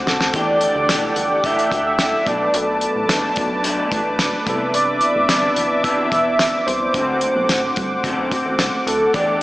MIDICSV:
0, 0, Header, 1, 6, 480
1, 0, Start_track
1, 0, Key_signature, 1, "minor"
1, 0, Tempo, 549954
1, 298, Time_signature, 4, 2, 24, 8
1, 8230, End_track
2, 0, Start_track
2, 0, Title_t, "Analog synth pad"
2, 0, Program_c, 0, 89
2, 0, Note_on_c, 0, 72, 78
2, 0, Note_on_c, 0, 78, 69
2, 0, Note_on_c, 0, 86, 96
2, 268, Note_off_c, 0, 86, 0
2, 282, Note_off_c, 0, 72, 0
2, 284, Note_off_c, 0, 78, 0
2, 299, Note_on_c, 0, 78, 76
2, 299, Note_on_c, 0, 79, 72
2, 300, Note_on_c, 0, 69, 78
2, 300, Note_on_c, 0, 86, 91
2, 1963, Note_off_c, 0, 78, 0
2, 1964, Note_off_c, 0, 69, 0
2, 1964, Note_off_c, 0, 79, 0
2, 1974, Note_on_c, 0, 81, 81
2, 1975, Note_on_c, 0, 71, 83
2, 3878, Note_off_c, 0, 81, 0
2, 3903, Note_on_c, 0, 76, 86
2, 6022, Note_off_c, 0, 71, 0
2, 6039, Note_off_c, 0, 76, 0
2, 6051, Note_on_c, 0, 72, 83
2, 6052, Note_on_c, 0, 78, 79
2, 7955, Note_off_c, 0, 72, 0
2, 7971, Note_on_c, 0, 79, 72
2, 7975, Note_on_c, 0, 69, 83
2, 8230, Note_off_c, 0, 69, 0
2, 8230, Note_off_c, 0, 78, 0
2, 8230, Note_off_c, 0, 79, 0
2, 8230, Note_off_c, 0, 86, 0
2, 8230, End_track
3, 0, Start_track
3, 0, Title_t, "Soft synth lead"
3, 0, Program_c, 1, 80
3, 74, Note_on_c, 1, 69, 79
3, 315, Note_on_c, 1, 74, 98
3, 328, Note_off_c, 1, 69, 0
3, 547, Note_off_c, 1, 74, 0
3, 557, Note_on_c, 1, 74, 107
3, 995, Note_off_c, 1, 74, 0
3, 1032, Note_on_c, 1, 74, 96
3, 1271, Note_on_c, 1, 76, 114
3, 1284, Note_off_c, 1, 74, 0
3, 1622, Note_off_c, 1, 76, 0
3, 1628, Note_on_c, 1, 76, 104
3, 1990, Note_on_c, 1, 74, 96
3, 2003, Note_off_c, 1, 76, 0
3, 2236, Note_on_c, 1, 69, 86
3, 2250, Note_off_c, 1, 74, 0
3, 2708, Note_off_c, 1, 69, 0
3, 3911, Note_on_c, 1, 69, 90
3, 4142, Note_on_c, 1, 74, 109
3, 4155, Note_off_c, 1, 69, 0
3, 4381, Note_off_c, 1, 74, 0
3, 4387, Note_on_c, 1, 74, 114
3, 5091, Note_on_c, 1, 76, 124
3, 5104, Note_off_c, 1, 74, 0
3, 5814, Note_on_c, 1, 72, 97
3, 5827, Note_off_c, 1, 76, 0
3, 6776, Note_off_c, 1, 72, 0
3, 7749, Note_on_c, 1, 69, 84
3, 7967, Note_off_c, 1, 69, 0
3, 7989, Note_on_c, 1, 74, 103
3, 8207, Note_off_c, 1, 74, 0
3, 8230, End_track
4, 0, Start_track
4, 0, Title_t, "Clean electric guitar"
4, 0, Program_c, 2, 27
4, 46, Note_on_c, 2, 66, 54
4, 60, Note_on_c, 2, 60, 51
4, 70, Note_on_c, 2, 57, 41
4, 283, Note_off_c, 2, 57, 0
4, 287, Note_on_c, 2, 52, 72
4, 291, Note_off_c, 2, 60, 0
4, 292, Note_off_c, 2, 66, 0
4, 294, Note_on_c, 2, 57, 79
4, 299, Note_on_c, 2, 62, 77
4, 304, Note_on_c, 2, 67, 87
4, 760, Note_off_c, 2, 52, 0
4, 770, Note_on_c, 2, 52, 58
4, 776, Note_off_c, 2, 57, 0
4, 779, Note_on_c, 2, 57, 56
4, 782, Note_off_c, 2, 67, 0
4, 783, Note_off_c, 2, 62, 0
4, 787, Note_on_c, 2, 62, 57
4, 792, Note_on_c, 2, 67, 67
4, 1242, Note_off_c, 2, 52, 0
4, 1252, Note_on_c, 2, 52, 79
4, 1254, Note_off_c, 2, 57, 0
4, 1257, Note_off_c, 2, 67, 0
4, 1257, Note_on_c, 2, 57, 87
4, 1261, Note_off_c, 2, 62, 0
4, 1264, Note_on_c, 2, 62, 82
4, 1268, Note_on_c, 2, 67, 99
4, 1484, Note_off_c, 2, 67, 0
4, 1493, Note_off_c, 2, 62, 0
4, 1494, Note_on_c, 2, 67, 44
4, 1496, Note_off_c, 2, 52, 0
4, 1498, Note_off_c, 2, 57, 0
4, 1503, Note_on_c, 2, 62, 46
4, 1517, Note_on_c, 2, 57, 38
4, 1963, Note_off_c, 2, 62, 0
4, 1966, Note_on_c, 2, 62, 63
4, 1971, Note_off_c, 2, 57, 0
4, 1975, Note_on_c, 2, 57, 66
4, 1977, Note_off_c, 2, 67, 0
4, 1981, Note_on_c, 2, 54, 60
4, 1983, Note_on_c, 2, 47, 55
4, 2676, Note_off_c, 2, 47, 0
4, 2684, Note_off_c, 2, 54, 0
4, 2686, Note_on_c, 2, 47, 59
4, 2690, Note_off_c, 2, 57, 0
4, 2694, Note_on_c, 2, 54, 62
4, 2701, Note_on_c, 2, 57, 60
4, 2704, Note_off_c, 2, 62, 0
4, 2708, Note_on_c, 2, 62, 63
4, 3158, Note_off_c, 2, 47, 0
4, 3164, Note_off_c, 2, 54, 0
4, 3168, Note_off_c, 2, 57, 0
4, 3169, Note_on_c, 2, 47, 91
4, 3175, Note_on_c, 2, 54, 103
4, 3178, Note_on_c, 2, 57, 99
4, 3179, Note_off_c, 2, 62, 0
4, 3182, Note_on_c, 2, 62, 105
4, 3392, Note_off_c, 2, 62, 0
4, 3403, Note_on_c, 2, 62, 51
4, 3405, Note_off_c, 2, 57, 0
4, 3414, Note_off_c, 2, 47, 0
4, 3415, Note_on_c, 2, 57, 51
4, 3417, Note_off_c, 2, 54, 0
4, 3427, Note_on_c, 2, 54, 44
4, 3888, Note_off_c, 2, 62, 0
4, 3891, Note_on_c, 2, 62, 67
4, 3893, Note_off_c, 2, 57, 0
4, 3896, Note_off_c, 2, 54, 0
4, 3896, Note_on_c, 2, 59, 61
4, 3899, Note_on_c, 2, 52, 55
4, 3905, Note_on_c, 2, 48, 56
4, 4602, Note_off_c, 2, 48, 0
4, 4610, Note_off_c, 2, 52, 0
4, 4612, Note_on_c, 2, 48, 54
4, 4618, Note_off_c, 2, 59, 0
4, 4621, Note_on_c, 2, 52, 54
4, 4628, Note_on_c, 2, 59, 62
4, 4631, Note_off_c, 2, 62, 0
4, 4635, Note_on_c, 2, 62, 67
4, 5082, Note_off_c, 2, 48, 0
4, 5085, Note_off_c, 2, 52, 0
4, 5091, Note_off_c, 2, 59, 0
4, 5093, Note_on_c, 2, 48, 89
4, 5096, Note_on_c, 2, 52, 85
4, 5102, Note_off_c, 2, 62, 0
4, 5102, Note_on_c, 2, 59, 85
4, 5106, Note_on_c, 2, 62, 92
4, 5320, Note_off_c, 2, 62, 0
4, 5331, Note_off_c, 2, 59, 0
4, 5331, Note_on_c, 2, 62, 47
4, 5336, Note_off_c, 2, 48, 0
4, 5338, Note_off_c, 2, 52, 0
4, 5342, Note_on_c, 2, 59, 48
4, 5352, Note_on_c, 2, 52, 40
4, 6048, Note_on_c, 2, 50, 77
4, 6058, Note_off_c, 2, 52, 0
4, 6060, Note_off_c, 2, 59, 0
4, 6061, Note_on_c, 2, 57, 80
4, 6071, Note_on_c, 2, 60, 89
4, 6080, Note_off_c, 2, 62, 0
4, 6083, Note_on_c, 2, 66, 86
4, 7009, Note_off_c, 2, 50, 0
4, 7012, Note_off_c, 2, 60, 0
4, 7012, Note_on_c, 2, 50, 97
4, 7015, Note_off_c, 2, 57, 0
4, 7019, Note_on_c, 2, 57, 97
4, 7022, Note_on_c, 2, 60, 104
4, 7023, Note_off_c, 2, 66, 0
4, 7027, Note_on_c, 2, 66, 99
4, 7241, Note_off_c, 2, 66, 0
4, 7251, Note_on_c, 2, 66, 55
4, 7252, Note_off_c, 2, 60, 0
4, 7255, Note_off_c, 2, 50, 0
4, 7259, Note_off_c, 2, 57, 0
4, 7262, Note_on_c, 2, 60, 48
4, 7276, Note_on_c, 2, 57, 42
4, 7966, Note_off_c, 2, 57, 0
4, 7969, Note_on_c, 2, 52, 72
4, 7970, Note_off_c, 2, 60, 0
4, 7973, Note_on_c, 2, 57, 72
4, 7977, Note_off_c, 2, 66, 0
4, 7980, Note_on_c, 2, 62, 82
4, 7984, Note_on_c, 2, 67, 81
4, 8230, Note_off_c, 2, 52, 0
4, 8230, Note_off_c, 2, 57, 0
4, 8230, Note_off_c, 2, 62, 0
4, 8230, Note_off_c, 2, 67, 0
4, 8230, End_track
5, 0, Start_track
5, 0, Title_t, "Analog synth bass"
5, 0, Program_c, 3, 38
5, 57, Note_on_c, 3, 36, 90
5, 153, Note_off_c, 3, 36, 0
5, 173, Note_on_c, 3, 38, 81
5, 271, Note_off_c, 3, 38, 0
5, 296, Note_on_c, 3, 40, 104
5, 585, Note_off_c, 3, 40, 0
5, 655, Note_on_c, 3, 38, 77
5, 776, Note_on_c, 3, 35, 84
5, 789, Note_off_c, 3, 38, 0
5, 969, Note_off_c, 3, 35, 0
5, 1017, Note_on_c, 3, 31, 89
5, 1402, Note_off_c, 3, 31, 0
5, 1497, Note_on_c, 3, 38, 90
5, 1882, Note_off_c, 3, 38, 0
5, 1977, Note_on_c, 3, 35, 93
5, 2170, Note_off_c, 3, 35, 0
5, 2216, Note_on_c, 3, 35, 114
5, 2506, Note_off_c, 3, 35, 0
5, 2578, Note_on_c, 3, 33, 80
5, 2675, Note_off_c, 3, 33, 0
5, 2696, Note_on_c, 3, 30, 92
5, 2890, Note_off_c, 3, 30, 0
5, 2943, Note_on_c, 3, 35, 92
5, 3326, Note_off_c, 3, 35, 0
5, 3418, Note_on_c, 3, 33, 98
5, 3803, Note_off_c, 3, 33, 0
5, 3898, Note_on_c, 3, 36, 89
5, 4379, Note_off_c, 3, 36, 0
5, 4500, Note_on_c, 3, 33, 82
5, 4596, Note_off_c, 3, 33, 0
5, 4617, Note_on_c, 3, 31, 97
5, 4810, Note_off_c, 3, 31, 0
5, 4855, Note_on_c, 3, 30, 86
5, 5241, Note_off_c, 3, 30, 0
5, 5340, Note_on_c, 3, 28, 87
5, 5724, Note_off_c, 3, 28, 0
5, 5822, Note_on_c, 3, 36, 99
5, 6013, Note_off_c, 3, 36, 0
5, 6060, Note_on_c, 3, 38, 101
5, 6347, Note_off_c, 3, 38, 0
5, 6421, Note_on_c, 3, 35, 78
5, 6516, Note_off_c, 3, 35, 0
5, 6544, Note_on_c, 3, 33, 88
5, 6734, Note_off_c, 3, 33, 0
5, 6781, Note_on_c, 3, 31, 94
5, 6972, Note_off_c, 3, 31, 0
5, 7016, Note_on_c, 3, 30, 89
5, 7113, Note_off_c, 3, 30, 0
5, 7139, Note_on_c, 3, 35, 99
5, 7235, Note_off_c, 3, 35, 0
5, 7380, Note_on_c, 3, 33, 83
5, 7476, Note_off_c, 3, 33, 0
5, 7499, Note_on_c, 3, 36, 98
5, 7594, Note_off_c, 3, 36, 0
5, 7736, Note_on_c, 3, 38, 101
5, 7929, Note_off_c, 3, 38, 0
5, 7978, Note_on_c, 3, 40, 106
5, 8230, Note_off_c, 3, 40, 0
5, 8230, End_track
6, 0, Start_track
6, 0, Title_t, "Drums"
6, 62, Note_on_c, 9, 38, 82
6, 150, Note_off_c, 9, 38, 0
6, 180, Note_on_c, 9, 38, 82
6, 267, Note_off_c, 9, 38, 0
6, 294, Note_on_c, 9, 42, 90
6, 296, Note_on_c, 9, 36, 112
6, 381, Note_off_c, 9, 42, 0
6, 383, Note_off_c, 9, 36, 0
6, 531, Note_on_c, 9, 42, 69
6, 618, Note_off_c, 9, 42, 0
6, 777, Note_on_c, 9, 38, 117
6, 780, Note_on_c, 9, 42, 113
6, 865, Note_off_c, 9, 38, 0
6, 867, Note_off_c, 9, 42, 0
6, 1013, Note_on_c, 9, 42, 75
6, 1101, Note_off_c, 9, 42, 0
6, 1255, Note_on_c, 9, 36, 92
6, 1256, Note_on_c, 9, 42, 92
6, 1342, Note_off_c, 9, 36, 0
6, 1344, Note_off_c, 9, 42, 0
6, 1385, Note_on_c, 9, 42, 54
6, 1473, Note_off_c, 9, 42, 0
6, 1497, Note_on_c, 9, 36, 96
6, 1502, Note_on_c, 9, 42, 84
6, 1584, Note_off_c, 9, 36, 0
6, 1590, Note_off_c, 9, 42, 0
6, 1734, Note_on_c, 9, 38, 114
6, 1738, Note_on_c, 9, 42, 107
6, 1821, Note_off_c, 9, 38, 0
6, 1825, Note_off_c, 9, 42, 0
6, 1977, Note_on_c, 9, 36, 106
6, 1982, Note_on_c, 9, 42, 72
6, 2064, Note_off_c, 9, 36, 0
6, 2069, Note_off_c, 9, 42, 0
6, 2216, Note_on_c, 9, 42, 92
6, 2303, Note_off_c, 9, 42, 0
6, 2455, Note_on_c, 9, 42, 66
6, 2542, Note_off_c, 9, 42, 0
6, 2699, Note_on_c, 9, 38, 125
6, 2702, Note_on_c, 9, 42, 110
6, 2786, Note_off_c, 9, 38, 0
6, 2789, Note_off_c, 9, 42, 0
6, 2932, Note_on_c, 9, 42, 74
6, 2942, Note_on_c, 9, 36, 91
6, 3019, Note_off_c, 9, 42, 0
6, 3029, Note_off_c, 9, 36, 0
6, 3177, Note_on_c, 9, 42, 97
6, 3264, Note_off_c, 9, 42, 0
6, 3418, Note_on_c, 9, 36, 101
6, 3422, Note_on_c, 9, 42, 88
6, 3505, Note_off_c, 9, 36, 0
6, 3510, Note_off_c, 9, 42, 0
6, 3656, Note_on_c, 9, 38, 116
6, 3660, Note_on_c, 9, 42, 102
6, 3744, Note_off_c, 9, 38, 0
6, 3748, Note_off_c, 9, 42, 0
6, 3898, Note_on_c, 9, 36, 108
6, 3903, Note_on_c, 9, 42, 73
6, 3986, Note_off_c, 9, 36, 0
6, 3991, Note_off_c, 9, 42, 0
6, 4137, Note_on_c, 9, 42, 94
6, 4224, Note_off_c, 9, 42, 0
6, 4371, Note_on_c, 9, 42, 67
6, 4458, Note_off_c, 9, 42, 0
6, 4616, Note_on_c, 9, 38, 121
6, 4619, Note_on_c, 9, 42, 109
6, 4704, Note_off_c, 9, 38, 0
6, 4706, Note_off_c, 9, 42, 0
6, 4855, Note_on_c, 9, 42, 80
6, 4943, Note_off_c, 9, 42, 0
6, 5098, Note_on_c, 9, 36, 99
6, 5101, Note_on_c, 9, 42, 93
6, 5185, Note_off_c, 9, 36, 0
6, 5188, Note_off_c, 9, 42, 0
6, 5340, Note_on_c, 9, 36, 92
6, 5345, Note_on_c, 9, 42, 89
6, 5427, Note_off_c, 9, 36, 0
6, 5432, Note_off_c, 9, 42, 0
6, 5580, Note_on_c, 9, 38, 112
6, 5584, Note_on_c, 9, 42, 114
6, 5667, Note_off_c, 9, 38, 0
6, 5671, Note_off_c, 9, 42, 0
6, 5828, Note_on_c, 9, 42, 78
6, 5915, Note_off_c, 9, 42, 0
6, 6058, Note_on_c, 9, 42, 89
6, 6059, Note_on_c, 9, 36, 107
6, 6146, Note_off_c, 9, 42, 0
6, 6147, Note_off_c, 9, 36, 0
6, 6294, Note_on_c, 9, 42, 67
6, 6381, Note_off_c, 9, 42, 0
6, 6539, Note_on_c, 9, 38, 121
6, 6542, Note_on_c, 9, 42, 109
6, 6627, Note_off_c, 9, 38, 0
6, 6629, Note_off_c, 9, 42, 0
6, 6775, Note_on_c, 9, 42, 72
6, 6782, Note_on_c, 9, 36, 89
6, 6862, Note_off_c, 9, 42, 0
6, 6870, Note_off_c, 9, 36, 0
6, 7017, Note_on_c, 9, 36, 95
6, 7019, Note_on_c, 9, 42, 88
6, 7104, Note_off_c, 9, 36, 0
6, 7106, Note_off_c, 9, 42, 0
6, 7257, Note_on_c, 9, 36, 96
6, 7261, Note_on_c, 9, 42, 87
6, 7345, Note_off_c, 9, 36, 0
6, 7348, Note_off_c, 9, 42, 0
6, 7496, Note_on_c, 9, 38, 113
6, 7500, Note_on_c, 9, 42, 102
6, 7583, Note_off_c, 9, 38, 0
6, 7587, Note_off_c, 9, 42, 0
6, 7746, Note_on_c, 9, 42, 74
6, 7833, Note_off_c, 9, 42, 0
6, 7978, Note_on_c, 9, 42, 84
6, 7979, Note_on_c, 9, 36, 110
6, 8066, Note_off_c, 9, 36, 0
6, 8066, Note_off_c, 9, 42, 0
6, 8230, End_track
0, 0, End_of_file